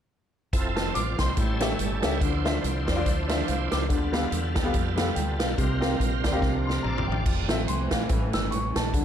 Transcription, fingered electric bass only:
0.54 F1
0.95 A1
1.19 C2
1.38 A1
1.79 G1
2.04 C#2
2.21 D2
2.64 C2
2.89 E2
3.06 D2
3.49 C2
3.72 C#2
3.90 D2
4.32 E2
4.57 D2
4.75 F2
5.16 D2
5.41 B1
5.59 C2
6.00 A#1
6.25 D2
6.42 C2
6.84 A#1
7.08 A1
7.26 F1
7.50 A1
7.68 C2
7.92 A#1
8.10 A1
8.34 G1
8.52 A1
8.76 A#1
8.94 D2

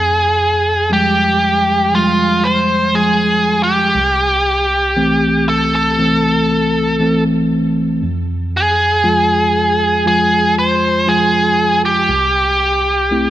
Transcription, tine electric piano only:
Already playing: F2
0.90 F3 G3 G#3
1.93 F3 G3 G#3
2.94 F3 G#3
3.95 C2
4.97 E3 A3 C4
5.99 E3 A3 C4
7.00 E3 A3 C4
8.03 F2
9.04 F3 G#3 F4
10.06 F3 G#3 F4
11.07 F3 G#3 F4
12.09 C2
13.11 A3 C4 E4

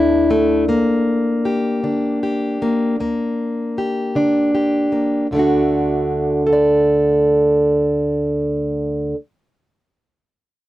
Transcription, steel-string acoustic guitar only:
Already playing: D3 A3 D4 E4
0.31 A3
0.68 D2 A#3
1.45 G4
1.83 D3 D4
2.23 G4
2.62 A#3
3.00 D2 A#3
3.78 G4
4.15 D3 D4
4.55 G4
4.92 A#3
5.31 D2 D3 A3
5.36 D4 F#4
6.47 A4
6.53 D5

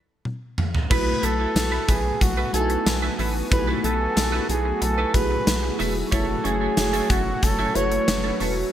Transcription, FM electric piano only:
0.90 A3 E4 F#4 B4
2.53 A3 D#4 F#4 G#5
2.60 E4
3.51 A3 E4 F#4 G4
3.59 G#5
5.14 A3 E4 F#4 G#4
6.12 A3 E4 F#4 C#5
7.74 A3 E4 F#4 B4

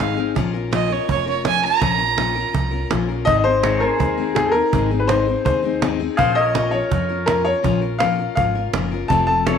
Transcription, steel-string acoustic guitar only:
0.00 G#2 D#3 G#3 C4 D#4 G#4
0.17 G#3 C4 D#4 G#4
0.35 A#2 F3 C#4 F4 A#4
0.53 C#4 F4 A#4
0.71 A#2 F3 C#4 F4 A#4
0.90 C#4 F4 A#4
1.08 F3 C#4 F4 A#4
1.26 C#4 F4 A#4
1.44 A#2 F3 C#4 F4 A#4
1.62 C#4 F4 A#4
1.81 A#2 F3 C#4 F4 A#4
1.98 C#4 F4 A#4
2.17 A#2 F3 C#4 F4 A#4
2.35 C#4 F4 A#4
2.53 F3 C#4 F4 A#4
2.71 C#4 F4 A#4
2.90 A#2 F3 C#4 F4 A#4
3.08 C#4 F4 A#4
3.26 G#2 D#3 G#3 C4 D#4 G#4
3.44 G#3 C4 D#4 G#4
3.63 G#2 D#3 G#3 C4 D#4 G#4
3.81 G#3 C4 D#4 G#4
3.99 G#3 C4 D#4 G#4
4.17 G#3 C4 D#4 G#4
4.36 G#2 D#3 G#3 C4 D#4 G#4
4.54 G#3 C4 D#4 G#4
4.72 G#2 D#3 G#3 C4 D#4 G#4
4.90 G#3 C4 D#4 G#4
5.08 G#2 D#3 G#3 C4 D#4 G#4
5.27 G#3 C4 D#4 G#4
5.45 G#3 C4 D#4 G#4
5.63 G#3 C4 D#4 G#4
5.81 G#2 D#3 G#3 C4 D#4 G#4
6.00 G#3 C4 D#4 G#4
6.18 A#2 F3 C#4 F4 A#4
6.36 C#4 F4 A#4
6.54 A#2 F3 C#4 F4 A#4
6.72 C#4 F4 A#4
6.90 F3 C#4 F4 A#4
7.09 C#4 F4 A#4
7.27 A#2 F3 C#4 F4 A#4
7.45 C#4 F4 A#4
7.63 A#2 F3 C#4 F4 A#4
7.81 C#4 F4 A#4
8.00 A#2 F3 C#4 F4 A#4
8.18 C#4 F4 A#4
8.37 F3 C#4 F4 A#4
8.55 C#4 F4 A#4
8.74 A#2 F3 C#4 F4 A#4
8.91 C#4 F4 A#4
9.10 F2 C3 F3 C4 F4 A4
9.28 F3 C4 F4 A4
9.46 F2 C3 F3 C4 F4 A4

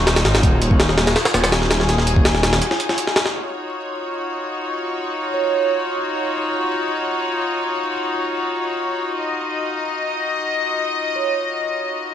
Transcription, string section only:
Already playing: D#4 F4 F#4 C#5
0.44 G#4
3.34 D#4 F4 F#4 C#5
9.16 D#5

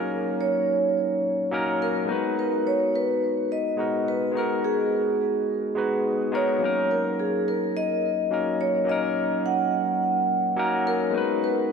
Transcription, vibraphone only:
Already playing: A#4
0.41 C#5
1.82 A#4
2.39 B4
2.67 C#5
2.96 B4
3.52 D#5
4.08 B4
4.37 A#4
4.64 G#4
6.35 C#5
6.91 A#4
7.19 G#4
7.48 A#4
7.77 D#5
8.61 C#5
8.89 D#5
9.46 F#5
10.87 A#4
11.44 B4

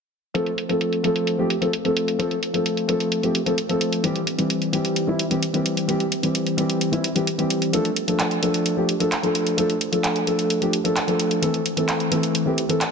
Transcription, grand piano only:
0.34 F3 A3 C4 A4
0.69 F3 A3 C4 A4
1.03 F3 A3 C4 A4
1.38 F3 A3 C4 G4
1.61 F3 A3 C4 A4
1.84 F3 A3 C4 A4
2.19 F3 A3 C4 A4
2.53 F3 A3 C4 A4
2.88 F3 A3 C4 A4
3.23 F3 A3 C4 G4
3.46 F3 A3 C4 A4
3.69 F3 A3 C4 A4
4.03 E3 G3 C4 G4
4.38 E3 G3 C4 G4
4.73 E3 G3 C4 G4
5.07 E3 G3 C4 E4
5.30 E3 G3 C4 G4
5.53 E3 G3 C4 G4
5.88 E3 G3 C4 G4
6.23 E3 G3 C4 G4
6.57 E3 G3 C4 G4
6.92 E3 G3 C4 E4
7.15 E3 G3 C4 G4
7.38 E3 G3 C4 G4
7.73 F3 A3 D4 A4
8.07 F3 A3 D4 A4
8.42 F3 A3 D4 A4
8.77 F3 A3 D4 G4
9.00 F3 A3 D4 A4
9.23 F3 A3 D4 A4
9.57 F3 A3 D4 A4
9.92 F3 A3 D4 A4
10.26 F3 A3 D4 A4
10.61 F3 A3 D4 G4
10.84 F3 A3 D4 A4
11.07 F3 A3 D4 A4
11.42 E3 A3 C4 A4
11.76 E3 A3 C4 A4
12.11 E3 A3 C4 A4
12.46 E3 A3 C4 G4
12.69 E3 A3 C4 A4

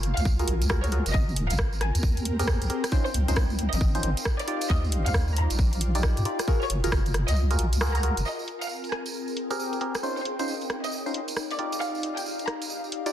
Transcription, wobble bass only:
Already playing: F#1
0.17 C#2
0.48 A#1
0.62 C#2
1.06 F#1
1.14 G#1
1.36 D#1
1.51 G#1
1.59 G#1
1.95 D#2
2.62 C2
3.14 C#2
3.28 C#2
3.36 C#2
3.73 G#1
4.03 G#1
4.70 D#2
4.92 A#1
5.06 D#2
5.14 D#2
5.51 A#1
6.17 G2
6.70 F#1
6.84 F#1
6.92 F#1
7.28 C#2
7.59 A#1
7.73 C#2
8.17 F#1

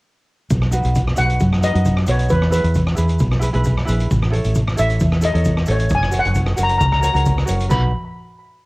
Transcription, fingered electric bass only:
0.51 B1
0.85 B1
1.18 B1
1.41 F#2
1.75 F#2
2.08 B1
2.30 E2
2.64 E2
2.98 E2
3.21 B1
3.54 B1
3.88 A#1
4.11 A1
4.45 A1
4.79 A1
5.01 E2
5.35 E2
5.68 A1
5.91 F#1
6.26 F#1
6.59 F#1
6.81 C#2
7.15 C#2
7.48 F#1
7.71 B1

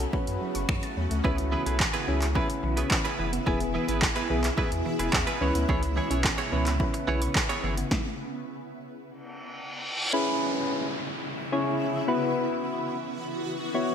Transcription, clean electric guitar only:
1.24 B3 E4 G#4 B4
1.38 muted clean electric guitar stroke
1.52 B3 E4 G#4 B4
1.66 B3 E4 G#4 B4
1.93 B3 E4 G#4 B4
2.07 B3 E4 G#4 B4
2.35 B3 E4 G#4 B4
2.63 muted clean electric guitar stroke
2.77 B3 E4 G#4 B4
2.91 muted clean electric guitar stroke
3.05 B3 E4 G#4 B4
3.19 B3 E4 G#4 B4
3.32 muted clean electric guitar stroke
3.46 B3 E4 G#4 B4
3.60 muted clean electric guitar stroke
3.74 B3 E4 G#4 B4
3.88 B3 E4 G#4 B4
4.02 muted clean electric guitar stroke
4.16 B3 E4 G#4 B4
4.30 B3 E4 G#4 B4
4.44 muted clean electric guitar stroke
4.57 B3 E4 G#4 B4
4.71 muted clean electric guitar stroke
4.85 muted clean electric guitar stroke
4.99 B3 E4 G#4 B4
5.13 muted clean electric guitar stroke
5.27 B3 E4 G#4 B4
5.41 B3 E4 G#4 C#5
5.55 muted clean electric guitar stroke
5.69 B3 E4 G#4 C#5
5.82 muted clean electric guitar stroke
5.96 B3 E4 G#4 C#5
6.10 B3 E4 G#4 C#5
6.38 B3 E4 G#4 C#5
6.52 B3 E4 G#4 C#5
6.94 muted clean electric guitar stroke
7.07 B3 E4 G#4 C#5
7.22 muted clean electric guitar stroke
7.35 muted clean electric guitar stroke
7.49 B3 E4 G#4 C#5
7.63 B3 E4 G#4 C#5

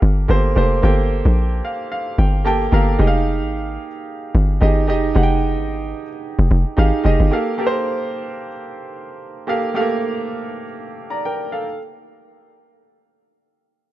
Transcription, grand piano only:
Already playing: A#3 G4 A4 F5
0.28 A#3 G4 A4 C5
0.55 A#3 G4 A4 C5
0.82 A#3 G4 A4 G5
1.65 F5
1.92 F5
2.19 G5
2.45 A#3 G4 A4 G5 A5
2.72 A#3 G4 A4 F5 A#5
2.99 D#4 G4 G#4 D#5
3.07 F5
4.61 D#4 G4 G#4 D#5
4.87 D#4 G4 G#4 D#5
5.14 D#4 G4 G#4 F#5
5.23 G5
6.77 D#4 G4 G#4 F5
7.04 D#4 G4 G#4 D#5
7.31 A#3 G4 A4 F5
7.58 A#3 G4 A4 A#4
7.67 C5
9.47 A#3 G4 A4 F5
9.74 A3 G4 A4 F5
9.81 A#3
11.10 D5 A#5
11.25 A#4 G5
11.52 A4 F5

